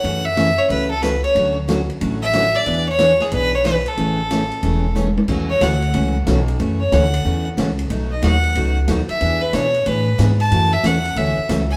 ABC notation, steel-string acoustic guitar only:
X:1
M:4/4
L:1/8
Q:"Swing" 1/4=183
K:A
V:1 name="Steel-string acoustic guitar"
[C,E,A,CF] z [C,E,A,CF] z [C,E,A,CF] z [C,E,A,CF] z | [D,F,A,CF] z [D,F,A,CF] z [D,F,A,CF] z [D,F,A,CF] z | [E,B,DG] z [E,B,DG] z [E,B,DG] z [E,B,DG] z | [C,E,A,CG] z [C,E,A,CG] z [C,E,A,CG] z [C,E,A,CG] z |
[C,E,A,CF] z [C,E,A,CF] z [C,E,A,CF] z [C,E,A,CF] z | [C,E,A,CF] z [C,E,A,CF] z [C,E,A,CF] z [C,E,A,CF] z | [B,,F,A,^DF] z [B,,F,A,DF] z [B,,F,A,DF] z [B,,F,A,DF] z | [E,B,DG] z [E,B,DG] z [E,B,DG] z [E,B,DG] z |
[C,E,A,CF] z [C,E,A,CF] z [C,E,A,CF] z [C,E,A,CF] z |]